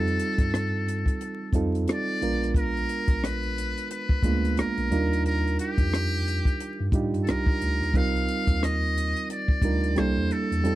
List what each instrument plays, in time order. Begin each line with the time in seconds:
Already playing: tine electric piano F2, reed electric piano G3 C4 D#4 F4 A4, muted trumpet A4
0.08 closed hi-hat
0.19 closed hi-hat
0.38 tine electric piano G2, kick, cross-stick, closed hi-hat
0.54 cross-stick, closed hi-hat
0.88 closed hi-hat
1.06 kick, closed hi-hat
1.21 closed hi-hat
1.53 tine electric piano F2, reed electric piano G3 C4 D#4 F4 A4, kick, closed hi-hat
1.75 closed hi-hat
1.88 muted trumpet D5, cross-stick, closed hi-hat
2.21 tine electric piano A#1, reed electric piano G#3 B3 D4 F4 A#4, closed hi-hat
2.43 cross-stick, closed hi-hat
2.54 muted trumpet A#4, kick, closed hi-hat
2.77 closed hi-hat
2.89 closed hi-hat
3.08 tine electric piano A#1, kick, closed hi-hat
3.24 muted trumpet B4, cross-stick, closed hi-hat
3.43 closed hi-hat
3.58 closed hi-hat
3.78 closed hi-hat
3.91 muted trumpet B4, closed hi-hat
4.09 kick
4.23 tine electric piano D2, reed electric piano G#3 A#3 B3 D4 F4, kick, closed hi-hat
4.45 closed hi-hat
4.57 muted trumpet A#4, cross-stick, closed hi-hat
4.78 tine electric piano B1, closed hi-hat
4.91 tine electric piano D#2, reed electric piano G3 D4 D#4 F4 A#4, closed hi-hat
5.13 closed hi-hat
5.26 muted trumpet A#4, closed hi-hat
5.47 closed hi-hat
5.59 muted trumpet G4, closed hi-hat
5.78 tine electric piano F2, kick, closed hi-hat
5.93 cross-stick, closed hi-hat
6.28 closed hi-hat
6.45 kick, closed hi-hat
6.60 closed hi-hat
6.80 tine electric piano G2
6.92 tine electric piano A2, reed electric piano G3 D4 D#4 F4 G4, kick, closed hi-hat
7.14 tine electric piano G2, closed hi-hat
7.24 muted trumpet A4, closed hi-hat
7.28 tine electric piano C2, muted trumpet A#4, cross-stick
7.46 kick
7.62 tine electric piano D2, closed hi-hat
7.82 tine electric piano D#2, cross-stick, closed hi-hat
7.94 tine electric piano C2, reed electric piano G3 C4 D#4 F4 A#4, muted trumpet F5, kick, closed hi-hat
8.17 closed hi-hat
8.28 closed hi-hat
8.47 tine electric piano D#2, kick, closed hi-hat
8.63 muted trumpet D#5, cross-stick, closed hi-hat
8.98 closed hi-hat
9.16 closed hi-hat
9.30 muted trumpet D5, closed hi-hat
9.48 kick
9.62 tine electric piano D2, reed electric piano G3 D4 D#4 F4 A#4, kick, closed hi-hat
9.84 closed hi-hat
9.96 tine electric piano C2, reed electric piano G3 A#3 D4 E4 A4, muted trumpet C5, cross-stick, closed hi-hat
10.17 tine electric piano E2
10.31 muted trumpet A4, closed hi-hat
10.51 tine electric piano E2, closed hi-hat
10.64 tine electric piano F2, reed electric piano G3 C4 D#4 F4 A4, closed hi-hat